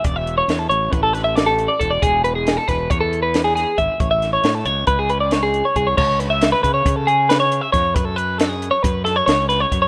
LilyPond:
<<
  \new Staff \with { instrumentName = "Clean electric guitar" } { \time 9/8 \key a \major \tempo 4. = 91 d''16 e''8 cis''8 a'16 cis''8 b'16 a'16 b'16 e''16 d''16 a'8 d''16 a'16 d''16 | gis'8 b'16 gis'8 a'16 b'8 cis''16 a'8 b'8 gis'16 gis'8 e''8 | cis''16 e''8 cis''8 a'16 cis''8 b'16 gis'16 b'16 d''16 cis''16 gis'8 cis''16 gis'16 cis''16 | cis''8 b'16 e''8 b'16 b'16 cis''8 a'16 gis'8 b'16 cis''8 e''16 cis''8 |
b'16 a'16 b'8 a'16 gis'8 cis''16 b'8 a'16 cis''16 cis''8 b'16 cis''8 cis''16 | }
  \new Staff \with { instrumentName = "Fingered electric bass" } { \clef bass \time 9/8 \key a \major e,,4 e,8 a,,8 a,,2 e,,8 | e,,4. e,,8 e,2 gis,,16 r16 | a,,4 a,8 cis,8 cis,2 c,8 | cis,4. cis8 cis2 f,8 |
fis,2 fis,4 cis,4 fis,8 | }
  \new DrumStaff \with { instrumentName = "Drums" } \drummode { \time 9/8 <hh bd>8 hh8 <hh sn>8 hh8 <hh bd>8 <hh sn>8 <hh sn>8 hh8 <hh bd>8 | <hh bd>8 hh8 <hh sn>8 <hh bd sn>8 <hh bd>8 hh8 <hh sn>8 <hh sn>8 <hh bd>8 | <hh bd>8 <hh sn>8 <hh sn>8 hh8 <hh bd>8 hh8 <hh sn>8 hh8 <hh bd>8 | <cymc bd>8 <hh sn>8 <hh sn>8 <hh bd>8 <hh bd>8 hh8 <hh sn>8 hh8 <hh bd sn>8 |
<hh bd>8 hh8 <hh sn>8 hh8 <hh bd>8 <hh sn>8 <hh sn>8 <hh sn>8 <hh bd>8 | }
>>